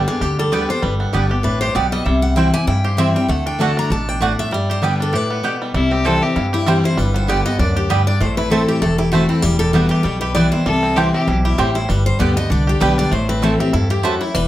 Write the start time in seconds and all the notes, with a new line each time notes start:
Already playing: G2 G3 D4 G4
0.08 B3 D4 G4 G#4
0.21 D2 D3 G4
0.39 G3 A4
0.52 D3 G3 B3 D4 G4 B4 D5 G5
0.69 G3 B3 G4 C5
0.82 G1 G2 G3 B4
1.00 B3
1.13 G1 D3 G3 B3 D4 G4 D5 G5
1.29 B3 G4
1.43 A1 A2 D4 B4
1.61 G4 C5
1.75 B1 B2 B3 G4 D5 G5
1.92 G3 D#5
2.05 C2 C3 G3 E5
2.22 F#5
2.36 E3 G3 C4 E4 C5 G5
2.53 C4 E4 G4 G#5
2.67 G2 E4 G5
2.84 G4 C5
2.97 E3 G3 C4 E4 C5 E5 G5
3.14 G3 C4 E4 G5
3.28 D2 D3 A3 F#5
3.46 D4 G5
3.59 D3 A3 D4 F#4 D5 F#5 A5
3.77 D4 A#5
3.90 A1 B2 D4 A5
4.09 D4 G5
4.21 A2 A3 D4 F#4 D5 F#5
4.39 A3 E5
4.51 G2 G3 D5
4.70 G4 C5
4.82 D3 G3 B3 G4 B4 D5 G5
5.00 D4 A4
5.13 A2 G4 B4
5.31 B3
5.43 B2 B3 G4 D5 G5
5.62 G3
5.74 C2 C3 G3 E4
5.91 C4 G4
6.05 E3 G3 C4 E4 A4 C5 G5
6.22 C4 E4 G4
6.36 G2 E4
6.53 E4 G4
6.66 E3 G3 C4 E4 G4 C5 G5
6.84 E4 C5
6.97 G1 G2 G3 B4
7.14 B3 C5
7.27 D3 G3 B3 G4 D5 G5
7.45 B3 G4 D#5
7.59 D2 F#2 D4 D5
7.76 G4
7.90 G2 G3 B3 G4 B4 D5 G5
8.07 D4 D5
8.20 A1 A2 A3 C5
8.37 E4 B4
8.50 E3 A3 C4 E4 A4 C5 A5
8.68 G4
8.82 E1 E2 A3 A4
8.98 E4 G4
9.12 E3 A3 C4 E4 F#4 C5 A5
9.29 C4 E4
9.42 E1 E2 G3 G4
9.59 G4 A4
9.73 E3 G3 B3 E4 F#4 B4 G5
9.89 G4
10.03 B1 B2 G3 G4
10.21 G4 B4
10.35 E3 G3 B3 E4 B4 D5 G5
10.52 B3 E4 C5
10.66 C2 C3 G3 A4
10.83 C4
10.96 E3 G3 C4 E4 G4 C5 G5
11.13 C4 E4 G4
11.27 B1 B2 E4
11.45 E4 G4
11.58 A1 A2 G3 C4 E4 G4 C5 G5
11.75 E4 C5
11.89 G1 G2 G3 B4
12.06 C5
12.19 D2 D3 G3 B3 G4 D5 G5
12.36 B3 G4 D#5
12.50 C2 D3 D4 D5
12.67 G4
12.80 B1 D3 G3 B3 G4 B4 D5 G5
12.98 D4 D5
13.11 A1 A2 A3 C5
13.29 C4 B4
13.42 E3 A3 C4 E4 A4 C5 A5
13.60 C4 E4 G4
13.73 E2 G2 E4 A4
13.90 G4
14.03 F#2 A3 E4 F#4 C5 A5
14.21 E4
14.35 E1 E2 G3 B4